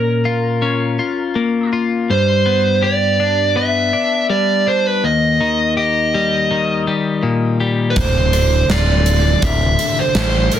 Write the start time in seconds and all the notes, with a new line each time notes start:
Already playing: A#2 C#4 A#4
0.25 F4
0.62 C#4
0.99 F4
1.36 A#3
1.73 F4
2.10 G2 C5
2.46 B3
2.82 G4 D5
3.20 D4
3.56 B3 E5
3.93 D4
4.30 G3 D5
4.67 D4 C5
4.87 B4
5.04 D#2 D#5
5.41 D#3
5.77 G4 D#5
6.14 G3
6.51 D#3
6.87 G3
7.23 A#2
7.60 G3
7.90 B4
7.96 D1 D2 C5, kick, closed hi-hat
8.33 D3, closed hi-hat
8.69 D1 F4 D5, snare, closed hi-hat
9.06 closed hi-hat
9.42 D1 D3 E5, kick, closed hi-hat
9.79 closed hi-hat
10.00 C5
10.15 A1 A2, snare, closed hi-hat
10.52 A#4, closed hi-hat